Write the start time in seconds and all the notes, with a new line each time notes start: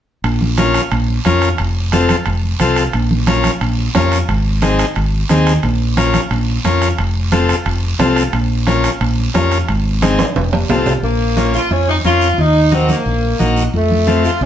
0.24 A#1, high conga, high timbale, long guiro
0.41 high conga
0.58 C#4 F4 A#4, high conga, high timbale, short guiro
0.74 high timbale, short guiro
0.91 A#1, high timbale, long guiro
1.09 high conga
1.25 F2 C#4 F4 A#4, high conga, high timbale, short guiro
1.42 high timbale, short guiro
1.58 F1, high conga, high timbale, long guiro
1.92 C4 F4 A4, high conga, high timbale, short guiro
2.09 high conga, high timbale, short guiro
2.26 F1, high timbale, long guiro
2.43 high conga
2.60 C2 C4 F4 A4, high conga, high timbale, short guiro
2.76 high timbale, short guiro
2.93 A#1, high conga, high timbale, long guiro
3.11 high conga
3.27 C#4 F4 A#4, high conga, high timbale, short guiro
3.44 high conga, high timbale, short guiro
3.61 A#1, high timbale, long guiro
3.78 high conga
3.95 F2 C#4 F4 A#4, high conga, high timbale, low timbale, short guiro
4.12 high timbale, short guiro
4.28 G#1, high conga, high timbale, long guiro
4.62 C4 D#4 G#4, high conga, high timbale, short guiro
4.79 high timbale, short guiro
4.96 G#1, high timbale, long guiro
5.13 high conga
5.29 D#2 C4 D#4 G#4, high conga, high timbale, short guiro
5.47 high timbale, short guiro
5.63 A#1, high conga, high timbale, long guiro
5.97 C#4 F4 A#4, high conga, high timbale, short guiro
6.14 high conga, high timbale, short guiro
6.31 A#1, high timbale, long guiro
6.48 high conga
6.65 F2 C#4 F4 A#4, high conga, high timbale, short guiro
6.82 high timbale, short guiro
6.98 F1, high conga, high timbale, long guiro
7.32 C4 F4 A4, high conga, high timbale, short guiro
7.49 high timbale, short guiro
7.66 F1, high timbale, long guiro
7.83 high conga
7.99 C2 C4 F4 A4, high conga, high timbale, low timbale, short guiro
8.16 high timbale, short guiro
8.33 A#1, high conga, high timbale, long guiro
8.67 C#4 F4 A#4, high conga, high timbale, short guiro
8.84 high timbale, short guiro
9.01 A#1, high timbale, long guiro
9.18 high conga
9.34 F2 C#4 F4 A#4, high conga, high timbale, low timbale, short guiro
9.51 high timbale, short guiro
9.68 G#1, high conga, high timbale, long guiro
10.02 C4 D#4 G#4, high conga, high timbale, short guiro
10.19 high conga, high timbale, short guiro
10.36 F1, low conga, high timbale, long guiro
10.53 high conga, low timbale
10.69 C2 C4 F4 A4, low conga, low timbale, short guiro
10.86 low conga, low timbale, short guiro
11.03 A#1 A#3, high conga, long guiro
11.37 C#4 F4 A#4, high conga, short guiro
11.54 F4, short guiro
11.71 F2 C#4, long guiro
11.88 D#4, high conga
12.04 F2 C#4 F4 A#4, high conga, short guiro
12.21 short guiro
12.38 D#2 D#4, high conga, long guiro
12.72 C4 D#4 F#4 A#4, high conga, short guiro
12.89 A#3, high conga, short guiro
13.06 A#1, long guiro
13.23 high conga
13.39 A#1 D#4 F#4 A#4, high conga, short guiro
13.56 short guiro
13.74 F2 A3, high conga, long guiro
13.90 high conga
14.07 C4 F4 A4, high conga, short guiro
14.24 F4, short guiro
14.41 C2 C#4, long guiro